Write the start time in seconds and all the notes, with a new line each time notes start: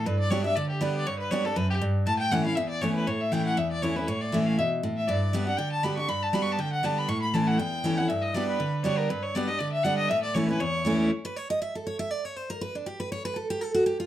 0.06 G2 B4
0.19 D5
0.30 G3 B3 D4 G4 C#5
0.44 D4 G4 E5
0.56 D3 D5
0.69 G4
0.81 G3 B3 D4 G4 B4
0.96 D5
1.06 G2 C#5
1.19 B4
1.31 G3 B3 D4 G4 C#5
1.45 D4 G4 A4
1.56 F#2 B4
1.70 G4
1.81 G2
2.06 A2 A5
2.19 G5
2.31 E3 A3 C#4 E4 F#5
2.44 C#4 E4 F5
2.55 E2 E5
2.69 D5
2.81 E3 A3 C#4 E4 C#5
2.95 B4
3.07 A2 C#5
3.20 E5
3.32 E3 A3 C#4 E4 G5
3.46 F#5
3.57 E2 E5
3.71 D5
3.82 E3 A3 C#4 E4 C#5
3.96 C#4 E4 B4
4.07 A2 C#5
4.21 D5
4.32 E3 A3 C#4 E4 E5
4.46 F5
4.58 B2 E5
4.83 A2
4.97 E5
5.08 G2 D5
5.33 G3 B3 D4 G4
5.46 D4 G4 F#5
5.57 D3 G5
5.72 A5
5.83 G3 B3 D4 G4 B5
5.97 D4 G4 C#6
6.08 G2 B5
6.23 A5
6.33 G3 B3 D4 G4 B5
6.42 C#6
6.52 A5
6.59 D3 G5
6.73 F#5
6.83 G3 B3 D4 G4 A5
6.98 B5
7.09 A2 C#6
7.22 B5
7.34 E3 A3 C#4 E4 A5
7.47 F#5
7.58 E2 G5
7.84 E3 A3 C#4 E4
7.97 C#4 E4 F#5
8.08 G2 E5
8.22 D#5
8.34 G3 B3 D4 G4 D5
8.48 B4
8.60 D3
8.84 G3 B3 D4 G4 C#5
8.98 A#4
9.09 G2 B4
9.23 C#5
9.34 G3 B3 D4 G4 D5
9.48 D4 G4 D#5
9.59 D3 D5
9.72 E5
9.83 G3 B3 D4 G4 F#5
9.98 D#5
10.09 A2 E5
10.23 D5
10.34 E3 A3 C#4 E4 C#5
10.48 C#4 E4 B4
10.60 E2 C#5
10.85 E3 A3 C#4 E4
11.25 B4
11.36 C#5
11.50 D#5
11.62 E5
11.75 A4
11.87 C#5
11.99 E5
12.11 D5
12.25 C#5
12.36 C5
12.50 A#4
12.61 B4
12.75 D4
12.86 G4
13.00 B4
13.12 C#5
13.25 B4
13.36 A4
13.50 G4
13.61 A4
13.74 F#4
13.86 G4
14.00 F4